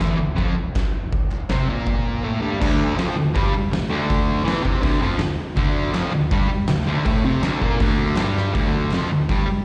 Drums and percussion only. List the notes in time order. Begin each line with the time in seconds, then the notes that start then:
0.00 kick, snare, clap, floor tom
0.19 floor tom
0.38 kick, floor tom
0.58 floor tom
0.75 kick, snare, clap, floor tom
0.94 floor tom
1.13 kick, floor tom
1.31 clap, floor tom
1.49 kick, snare, clap, floor tom
1.68 floor tom
1.86 kick, floor tom
2.06 floor tom
2.62 kick, crash
2.99 snare, open hi-hat
3.35 kick, open hi-hat
3.73 snare, open hi-hat
4.10 kick, open hi-hat
4.47 snare, open hi-hat
4.65 kick
4.83 kick, open hi-hat
5.19 snare, open hi-hat
5.56 kick, open hi-hat
5.94 snare, clap, open hi-hat
6.31 kick, open hi-hat
6.67 snare, clap, open hi-hat
7.05 kick, open hi-hat
7.43 snare, clap, open hi-hat
7.62 kick
7.80 kick, open hi-hat
8.16 snare, clap, open hi-hat
8.37 snare
8.55 kick, open hi-hat
8.91 snare, clap, open hi-hat
9.29 kick, open hi-hat